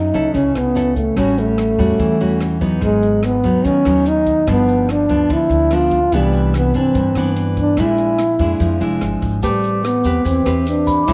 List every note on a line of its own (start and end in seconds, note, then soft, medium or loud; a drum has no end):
0.00 0.34 F#3 medium
0.00 0.11 C#4 medium
0.00 0.36 D#4 medium
0.00 0.12 E4 medium
0.00 0.12 A4 medium
0.14 0.33 C#2 medium
0.14 0.73 C#4 medium
0.14 0.73 E4 medium
0.14 0.73 A4 medium
0.14 closed hi-hat soft
0.34 0.54 C#2 medium
0.34 1.15 C#3 medium
0.34 0.59 C#4 medium
0.34 kick medium
0.34 closed hi-hat soft
0.55 1.13 C#2 medium
0.55 0.96 B3 medium
0.55 cross-stick medium
0.55 closed hi-hat soft
0.75 1.02 C#4 soft
0.75 1.03 E4 medium
0.75 1.03 A4 medium
0.75 closed hi-hat soft
0.96 1.19 A3 medium
0.96 kick medium
0.96 closed hi-hat soft
1.16 1.75 A1 medium
1.16 1.98 A2 medium
1.16 1.76 G3 medium
1.16 1.40 C#4 medium
1.16 1.76 C#4 medium
1.16 1.76 F#4 medium
1.16 kick medium
1.16 cross-stick medium
1.16 closed hi-hat soft
1.38 2.62 A3 medium
1.38 closed hi-hat soft
1.58 cross-stick medium
1.58 closed hi-hat soft
1.79 1.98 E2 medium
1.79 2.17 G3 medium
1.79 2.17 C#4 medium
1.79 2.17 F#4 medium
1.79 kick soft
1.79 closed hi-hat soft
1.99 2.19 E2 medium
1.99 2.80 E3 medium
1.99 kick medium
1.99 closed hi-hat soft
2.20 2.78 E2 medium
2.20 2.59 G3 soft
2.20 2.59 C#4 medium
2.20 2.59 F#4 medium
2.20 closed hi-hat soft
2.40 cross-stick medium
2.40 closed hi-hat soft
2.61 3.41 F#3 soft
2.61 3.41 B3 medium
2.61 3.41 D#4 medium
2.61 kick medium
2.61 closed hi-hat soft
2.81 3.40 G#1 medium
2.81 3.62 G#2 soft
2.81 3.26 G#3 medium
2.81 kick medium
2.81 closed hi-hat soft
3.03 closed hi-hat soft
3.23 3.67 B3 medium
3.23 cross-stick medium
3.23 closed hi-hat soft
3.44 3.63 D#2 medium
3.44 3.83 F#3 soft
3.44 3.83 B3 medium
3.44 3.83 D#4 medium
3.44 closed hi-hat soft
3.64 3.84 D#2 medium
3.64 4.46 D#3 medium
3.64 4.09 C#4 loud
3.64 kick medium
3.64 closed hi-hat soft
3.85 4.44 D#2 medium
3.85 4.44 F#3 medium
3.85 4.44 B3 medium
3.85 4.44 D#4 medium
3.85 cross-stick medium
3.85 closed hi-hat soft
4.06 4.48 D#4 loud
4.06 closed hi-hat soft
4.26 kick medium
4.26 closed hi-hat soft
4.47 5.05 G1 medium
4.47 5.28 G2 medium
4.47 5.06 F3 medium
4.47 5.06 B3 medium
4.47 5.06 D4 medium
4.47 kick medium
4.47 cross-stick medium
4.47 closed hi-hat soft
4.51 4.93 B3 medium
4.69 closed hi-hat soft
4.89 5.34 D4 medium
4.89 cross-stick medium
4.89 closed hi-hat soft
5.09 5.28 D2 medium
5.09 5.68 F3 medium
5.09 5.68 B3 medium
5.09 5.68 D4 medium
5.09 closed hi-hat soft
5.29 5.49 D2 medium
5.29 6.10 D3 medium
5.29 5.76 E4 medium
5.29 kick medium
5.29 closed hi-hat soft
5.50 6.08 D2 medium
5.50 closed hi-hat soft
5.71 5.98 F3 soft
5.71 5.98 B3 soft
5.71 5.99 D4 medium
5.71 6.17 F4 loud
5.71 cross-stick medium
5.71 closed hi-hat soft
5.91 kick medium
5.91 closed hi-hat soft
6.12 6.70 C2 medium
6.12 6.93 C3 medium
6.12 6.72 E3 medium
6.12 6.55 G3 medium
6.12 6.72 B3 medium
6.12 6.72 D4 medium
6.12 kick medium
6.12 closed hi-hat soft
6.33 closed hi-hat soft
6.54 6.78 B3 medium
6.54 cross-stick medium
6.54 closed hi-hat soft
6.74 6.94 G2 medium
6.74 7.13 E3 medium
6.74 7.31 C4 medium
6.74 7.13 D4 medium
6.74 closed hi-hat soft
6.94 7.14 G2 medium
6.94 7.76 G2 medium
6.94 kick medium
6.94 closed hi-hat soft
7.15 7.74 G2 medium
7.15 7.75 E3 medium
7.15 7.75 B3 medium
7.15 7.75 D4 medium
7.15 cross-stick medium
7.15 closed hi-hat soft
7.36 closed hi-hat soft
7.57 7.82 D4 medium
7.57 kick medium
7.57 closed hi-hat soft
7.77 8.36 A#1 medium
7.77 8.59 A#2 medium
7.77 8.20 G#3 medium
7.77 8.20 D4 medium
7.77 8.20 E4 medium
7.77 9.03 E4 medium
7.77 kick soft
7.77 cross-stick medium
7.77 closed hi-hat soft
7.98 closed hi-hat soft
8.18 cross-stick medium
8.18 closed hi-hat soft
8.39 8.59 F2 medium
8.39 8.78 G#3 soft
8.39 8.78 D4 medium
8.39 8.78 E4 medium
8.39 kick medium
8.39 closed hi-hat soft
8.60 8.79 F2 medium
8.60 9.41 F3 medium
8.60 kick medium
8.60 closed hi-hat soft
8.80 8.99 F1 medium
8.80 9.39 G#3 medium
8.80 9.40 D4 medium
8.80 9.40 E4 medium
8.80 closed hi-hat soft
9.01 9.20 G1 medium
9.01 cross-stick medium
9.01 closed hi-hat soft
9.22 9.41 G#1 medium
9.22 kick medium
9.22 closed hi-hat soft
9.43 10.01 A1 medium
9.43 9.86 G3 medium
9.43 10.24 A3 medium
9.43 10.02 C4 soft
9.43 10.02 G4 medium
9.43 10.02 B4 medium
9.43 10.26 D6 soft
9.43 kick medium
9.43 closed hi-hat soft
9.43 shaker medium
9.64 closed hi-hat soft
9.64 shaker soft
9.84 10.28 B3 medium
9.84 cross-stick medium
9.84 closed hi-hat soft
9.84 shaker medium
10.04 10.24 E2 medium
10.04 10.43 C4 medium
10.04 10.43 G4 medium
10.04 10.43 B4 medium
10.04 closed hi-hat soft
10.04 shaker medium
10.25 10.44 E2 medium
10.25 11.06 E3 medium
10.25 10.67 C4 medium
10.25 kick medium
10.25 closed hi-hat soft
10.25 shaker medium
10.45 11.04 E2 medium
10.45 11.05 C4 medium
10.45 11.05 G4 medium
10.45 11.05 B4 medium
10.45 cross-stick medium
10.45 closed hi-hat soft
10.45 shaker soft
10.66 11.10 D4 medium
10.66 closed hi-hat soft
10.66 shaker soft
10.87 11.13 B5 medium
10.87 kick medium
10.87 closed hi-hat soft
10.87 shaker medium
11.04 11.13 A#2 medium
11.04 11.13 D6 soft
11.08 11.13 A#1 medium
11.08 11.13 G#3 medium
11.08 11.13 C#4 medium
11.08 11.13 E4 medium
11.08 11.13 E4 loud
11.08 kick medium
11.08 cross-stick medium
11.08 closed hi-hat soft
11.08 shaker medium